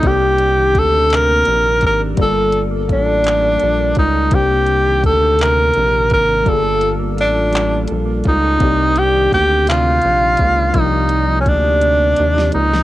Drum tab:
HH |x-x-x-x-x-x-|x-x-x-x-x-x-|x-x-x-x-x-x-|x-x-x-x-x-x-|
CP |------x-----|------x-----|------x-----|------x-----|
SD |------------|------------|------------|------------|
BD |o---o-----o-|o---o-----o-|o---o-----o-|o---------o-|

HH |x-x-x-x-x-x-|x-x-x-x-x-x-|
CP |------x-----|------------|
SD |------------|---------o-o|
BD |o---o-----o-|o---o-------|